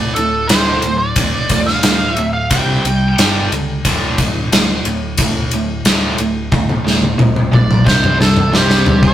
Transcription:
Already playing: D1 D2 A2 D5
0.15 D1 D2 A2 A4, ride
0.47 D1 D2 A2 D3 C5, snare, ride
0.82 D1 D2 A2, ride
0.98 D5
1.16 D1 D2 A2, kick, ride
1.49 D1 D2 A2, kick, ride
1.66 F5, snare
1.83 D1 D2 A2, snare, ride
2.11 E5
2.17 D1 D2 A2, ride
2.33 F5
2.50 C2 C3 G3 C4 G5, kick, ride
2.84 C2 C3 G3, ride
3.18 G1 G2 D3 G3, snare, ride
3.51 C#2 G2 D3, ride
3.85 D1 D2 A2 D3, kick, ride
4.18 D1 D2 A2, kick, ride
4.51 D1 D2 A2, snare, ride
4.85 D1 D2 A2, ride
5.18 D1 D2 A2, kick, ride
5.51 D1 D2 A2, ride
5.85 D1 D2 A2 D3, snare, ride
6.18 D1 D2 A2, ride
6.52 D1 D2 A2, kick, high tom
6.69 high tom
6.84 D1 D2 A2, snare
7.02 high tom
7.18 D1 D2 A2, mid tom
7.36 mid tom
7.52 B1 D2 A2 D5, mid tom
7.71 mid tom
7.85 C2 C3 G3 C4 C5, kick, snare
8.04 mid tom
8.19 C2 C3 G3 A4, snare
8.37 mid tom
8.52 C2 C3 G3 C4 G4, snare
8.58 C5
8.70 snare
8.86 C#2 C3 G3, floor tom
9.02 A4, kick
9.07 D5

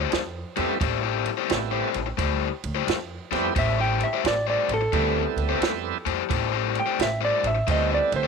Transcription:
Already playing: C5
0.00 A3 E4 G4 C5
0.12 F2, snare, ride
0.56 F2 G3 A3 B3 C4 E4 G4 A4 C5, ride
0.80 A1 A3 E4 G4 C5, kick, ride
1.03 A3 E4 G4 C5
1.26 ride
1.38 A3 E4 G4 C5
1.49 A1 G3 B3 C4 E4 A4, snare, ride
1.72 A3 E4 G4 C5
1.94 A1, ride
2.06 muted overdriven electric guitar stroke
2.18 D2 A3 E4 G4 C5, kick, ride
2.64 D2, ride
2.75 A3 E4 G4 C5
2.87 F2, snare, ride
3.31 F2 G3 A3 B3 C4 E4 G4 C5, snare, ride
3.55 A1 A3 E4 G4 C5 E5, kick, ride
3.78 A3 E4 G4 C5 G5
4.00 E5, ride
4.13 A3 E4 G4 C5
4.24 A1 D5, snare, ride
4.47 A3 E4 G4 C5 D5
4.69 A1, ride
4.74 A4
4.81 muted overdriven electric guitar stroke
4.93 D2 G3 A3 B3 C4 E4 G4 A4 C5, kick, ride
5.36 D2, ride
5.49 A3 E4 G4 C5
5.61 F2, snare, ride
6.06 F2 A3 E4 G4 C5, ride
6.29 A1 A3 E4 G4 C5, kick, ride
6.52 A3 E4 G4 C5
6.75 ride
6.79 G5
6.86 A3 E4 G4 C5
6.99 A1 E5, snare, ride
7.21 A3 E4 G4 C5 D5
7.43 A1 E5, ride
7.55 muted overdriven electric guitar stroke
7.67 D2 G3 A3 B3 C4 E4 G4 A4 C5, kick, ride
7.71 D#5
7.94 D5
8.12 D2, ride
8.16 C5
8.24 C5

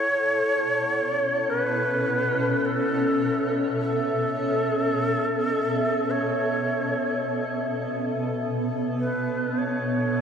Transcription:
Already playing: B2 B3 C#4 E4 A4 C#5 F#5
1.42 E5
1.50 A#4
1.61 B4
2.65 A4
3.82 A4
6.11 C#5
8.61 D4
8.99 B4
9.59 C#5

